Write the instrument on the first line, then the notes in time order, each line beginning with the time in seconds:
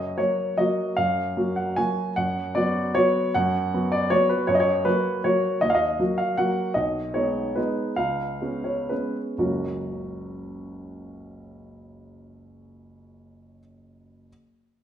grand piano
Already playing: F#2 D#5
0.18 F#3 A#3 F#4 C#5
0.58 F#3 A#3 F#4 D#5
0.97 F#2 F5
1.37 F#3 A#3 F#4
1.56 F#5
1.76 F#3 A#3 F#4 G#5
2.16 F#2 F#5
2.55 F#3 B3 F#4 D5
2.95 F#3 B3 F#4 C#5
3.35 F#2 F#5
3.74 F#3 B3 F#4
3.92 D5
4.10 F#3 B3 F#4 C#5
4.29 B4
4.47 F#2 C#5
4.54 D#5
4.60 C#5
4.85 F#3 A#3 F#4 B4
5.24 F#3 A#3 F#4 C#5
5.61 D#2 D#5
5.70 F5
5.75 D#5
6.00 F#3 A#3 F#4
6.18 F5
6.38 F#3 A#3 F#4 F#5
6.74 B1 D#5
7.14 G#3 B3 D#4 C#5
7.55 G#3 B3 D#4 B4
7.96 C#2 F5
8.41 G#3 B3 C#4
8.64 C#5
8.89 G#3 B3 C#4 B4
9.38 F#1 C#2 F#3 A#3 C#4 F#4